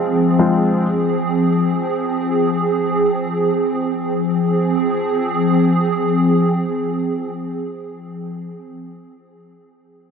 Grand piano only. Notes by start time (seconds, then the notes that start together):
Already playing: F3 G#3 C4 F4
0.39 F3 G#3 C4 F4